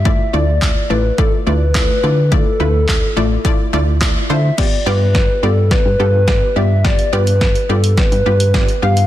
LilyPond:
<<
  \new Staff \with { instrumentName = "Soft synth lead" } { \time 4/4 \key g \mixolydian \tempo 4 = 106 e''8 d''4 b'8 a'8 b'4. | a'2. r8 e''8 | d''8 b'4 a'8 b'4. e''8 | d''8 b'4 a'8 b'4. f''8 | }
  \new Staff \with { instrumentName = "Synth pluck" } { \time 4/4 \key g \mixolydian <a e' f' d''>8 <a e' f' d''>8 <a e' f' d''>8 <a e' f' d''>8 <a e' f' d''>8 <a e' f' d''>8 <a e' f' d''>8 <a e' f' d''>8 | <a e' f' d''>8 <a e' f' b'>8 <a e' f' d''>8 <a e' f' d''>8 <a e' f' d''>8 <a e' f' d''>8 <a e' f' d''>8 <a e' f' c''>8 | <b f' g' d''>8 <b f' g' d''>8 <b f' g' d''>8 <b f' g' d''>8 <b f' g' d''>8 <b f' g' a'>8 <b f' g' d''>8 <b f' g' d''>8 | <b f' g' d''>8 <b f' g' d''>8 <b f' g' b'>8 <b f' g' d''>8 <b f' g' d''>8 <b f' g' b'>8 <b f' g' d''>8 <b f' g' f''>8 | }
  \new Staff \with { instrumentName = "FM bass" } { \clef bass \time 4/4 \key g \mixolydian g,8 d,4 a,,8 r8 d,4 d8~ | d8 d,4 a,,8 r8 d,4 d8 | r8 g,4 g,8. g,16 g,4 g,8~ | g,8 g,4 g,8. g,16 g,4 g,8 | }
  \new DrumStaff \with { instrumentName = "Drums" } \drummode { \time 4/4 bd4 <hc bd>4 bd4 <hc bd>4 | bd4 <hc bd>4 bd4 <hc bd>4 | <cymc bd sn>4 <bd sn>4 <bd sn>4 <bd sn>4 | <bd sn>16 hh8 hh16 <bd sn>16 hh8 hh16 <bd sn>16 hh8 hh16 <bd sn>16 hh8 hh16 | }
>>